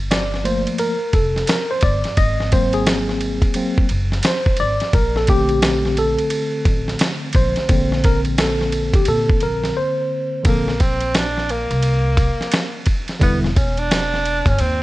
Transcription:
0.00 0.63 G1 medium
0.11 0.46 D5 medium
0.11 snare loud
0.11 hi-hat pedal medium
0.11 ride medium
0.34 snare soft
0.44 0.94 F3 medium
0.44 0.94 A3 soft
0.44 0.94 A#3 medium
0.44 0.61 C5 medium
0.44 ride medium
0.67 ride soft
0.78 1.15 A#4 medium
0.78 ride medium
1.13 1.42 F1 medium
1.13 1.49 A4 medium
1.13 kick medium
1.13 ride medium
1.36 snare soft
1.36 ride soft
1.47 1.71 A#4 medium
1.47 snare loud
1.47 hi-hat pedal medium
1.47 ride medium
1.71 1.84 C5 medium
1.81 2.01 G1 medium
1.81 2.19 D5 medium
1.81 kick medium
1.81 ride medium
2.04 snare soft
2.04 ride soft
2.17 3.39 G#1 loud
2.17 2.53 D#5 loud
2.17 kick loud
2.17 ride medium
2.40 snare soft
2.52 3.54 F#3 medium
2.52 3.54 A#3 medium
2.52 3.55 C4 medium
2.52 2.75 C5 loud
2.52 kick medium
2.52 ride medium
2.73 3.73 G#4 medium
2.73 ride soft
2.87 snare loud
2.87 hi-hat pedal medium
2.87 ride medium
3.09 snare soft
3.21 ride medium
3.42 kick medium
3.42 ride soft
3.54 3.86 F#3 soft
3.54 3.87 A#3 soft
3.54 3.87 C4 medium
3.54 ride medium
3.78 kick medium
3.89 4.18 F#1 medium
3.89 ride medium
4.12 snare soft
4.12 ride soft
4.23 4.60 C5 loud
4.23 snare loud
4.23 hi-hat pedal medium
4.23 ride medium
4.46 kick medium
4.57 4.77 G#1 medium
4.57 4.95 D5 loud
4.57 ride medium
4.80 snare soft
4.80 ride soft
4.93 6.15 A#1 loud
4.93 5.16 A#4 loud
4.93 kick loud
4.93 ride medium
5.16 5.29 A4 medium
5.16 snare soft
5.27 7.68 D3 medium
5.27 8.00 A3 medium
5.27 7.69 C4 medium
5.27 6.00 G4 loud
5.27 kick medium
5.27 ride medium
5.49 ride soft
5.62 snare loud
5.62 hi-hat pedal medium
5.62 ride medium
5.85 snare soft
5.97 6.97 A4 medium
5.97 ride medium
6.18 ride soft
6.30 ride medium
6.65 6.94 A1 medium
6.65 kick medium
6.65 ride medium
6.88 snare soft
6.88 ride soft
6.99 snare loud
6.99 hi-hat pedal medium
6.99 ride medium
7.33 7.53 A#1 medium
7.33 8.06 C5 medium
7.33 kick medium
7.33 ride medium
7.56 snare soft
7.56 ride soft
7.69 8.91 A#1 loud
7.69 10.41 D3 medium
7.69 10.42 A#3 medium
7.69 10.42 C4 medium
7.69 kick loud
7.69 ride medium
7.92 snare soft
8.04 8.20 A#4 loud
8.04 kick medium
8.04 ride medium
8.25 ride soft
8.38 8.97 A4 medium
8.38 snare loud
8.38 hi-hat pedal medium
8.38 ride medium
8.61 snare soft
8.72 ride medium
8.94 9.08 G4 medium
8.94 kick medium
8.94 ride soft
9.05 9.36 A#2 loud
9.05 9.43 A4 loud
9.05 ride medium
9.30 kick loud
9.40 9.70 A#1 medium
9.40 9.78 A#4 loud
9.40 ride soft
9.63 snare soft
9.63 ride soft
9.77 10.41 C5 medium
10.43 11.67 A#1 medium
10.43 10.71 D3 medium
10.43 10.72 A#3 medium
10.43 10.82 A#3 medium
10.43 10.72 C4 medium
10.43 10.73 A4 medium
10.43 kick loud
10.43 ride medium
10.68 snare soft
10.80 11.17 C4 medium
10.80 kick medium
10.80 ride medium
11.01 ride soft
11.15 11.52 D4 loud
11.15 snare loud
11.15 hi-hat pedal soft
11.15 ride medium
11.37 snare soft
11.49 12.87 A#3 medium
11.49 ride medium
11.71 12.26 C2 medium
11.71 ride soft
11.83 ride medium
12.17 kick medium
12.17 ride medium
12.41 snare soft
12.41 ride soft
12.52 snare loud
12.52 hi-hat pedal medium
12.52 ride medium
12.86 kick medium
12.86 ride medium
13.08 snare soft
13.08 ride soft
13.19 14.43 E1 loud
13.19 13.47 D3 medium
13.19 13.47 G3 medium
13.19 13.48 B3 medium
13.19 13.38 B3 medium
13.19 13.49 E4 medium
13.19 kick loud
13.19 ride medium
13.44 snare soft
13.56 13.80 C#4 medium
13.56 kick medium
13.56 ride medium
13.77 14.49 D4 loud
13.77 ride soft
13.91 snare loud
13.91 hi-hat pedal medium
13.91 ride medium
14.14 snare soft
14.25 ride medium
14.46 14.56 G1 medium
14.46 14.62 C#4 medium
14.46 kick medium
14.46 ride soft
14.58 14.83 D#2 loud
14.58 14.83 C4 medium
14.58 ride medium

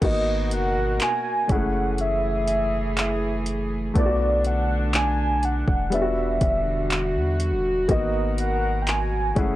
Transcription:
0.01 0.53 G#1 loud
0.01 1.48 B2 medium
0.01 1.49 A#3 medium
0.01 1.50 B3 medium
0.01 1.50 D#4 medium
0.01 1.48 F#4 medium
0.01 1.51 F#4 medium
0.01 1.48 A#4 medium
0.01 0.49 D#5 medium
0.01 kick loud
0.01 closed hi-hat medium
0.01 crash medium
0.51 0.78 F#1 loud
0.51 0.98 F#5 loud
0.51 closed hi-hat medium
0.76 0.99 G#1 loud
1.00 1.53 G#5 loud
1.00 clap loud
1.00 closed hi-hat medium
1.48 3.92 F#1 loud
1.48 3.93 E3 medium
1.48 1.55 G#3 medium
1.48 5.88 A3 medium
1.48 3.91 C#4 medium
1.48 3.92 E4 medium
1.48 3.93 G#4 medium
1.48 kick loud
1.48 closed hi-hat medium
1.52 3.92 A3 medium
1.52 3.93 G#4 medium
1.52 2.00 F#5 loud
1.98 3.44 E5 loud
1.98 closed hi-hat medium
2.48 closed hi-hat medium
2.97 clap loud
2.97 closed hi-hat medium
3.46 closed hi-hat medium
3.94 5.64 B1 loud
3.94 5.90 D3 medium
3.94 5.88 A3 medium
3.94 5.88 B3 medium
3.94 5.91 D4 medium
3.94 5.89 D4 medium
3.94 kick loud
3.94 closed hi-hat medium
3.98 4.04 E4 medium
3.98 4.43 D5 medium
4.06 5.94 F#4 medium
4.45 4.92 F#5 loud
4.45 closed hi-hat medium
4.94 5.46 G#5 loud
4.94 clap loud
4.94 closed hi-hat medium
5.43 5.96 F#5 loud
5.43 closed hi-hat medium
5.68 6.39 E1 loud
5.68 kick medium
5.90 7.87 D3 medium
5.90 7.84 G3 medium
5.90 7.87 G3 medium
5.90 7.85 B3 medium
5.90 7.86 D4 medium
5.90 9.33 F#4 medium
5.90 closed hi-hat medium
5.94 6.00 F4 medium
5.94 7.41 E5 medium
6.02 7.89 F#4 medium
6.41 7.17 E1 loud
6.41 kick loud
6.41 closed hi-hat medium
6.91 clap loud
6.91 closed hi-hat medium
7.15 7.54 E2 loud
7.40 closed hi-hat medium
7.52 7.87 E1 loud
7.88 9.33 G#1 loud
7.88 9.35 B2 medium
7.88 9.36 A#3 medium
7.88 9.37 B3 medium
7.88 9.37 D#4 medium
7.88 9.37 F#4 medium
7.88 9.35 A#4 medium
7.88 8.36 D#5 medium
7.88 kick loud
7.88 closed hi-hat medium
8.38 8.84 F#5 loud
8.38 closed hi-hat medium
8.82 8.91 G5 medium
8.87 9.40 G#5 loud
8.87 clap loud
8.87 closed hi-hat medium
9.35 9.56 F#1 loud
9.35 9.56 E3 medium
9.35 9.42 G#3 medium
9.35 9.56 A3 medium
9.35 9.56 C#4 medium
9.35 9.56 E4 medium
9.35 9.56 G#4 medium
9.35 9.56 F#5 loud
9.35 kick loud
9.35 closed hi-hat medium
9.40 9.56 A3 medium
9.40 9.56 G#4 medium

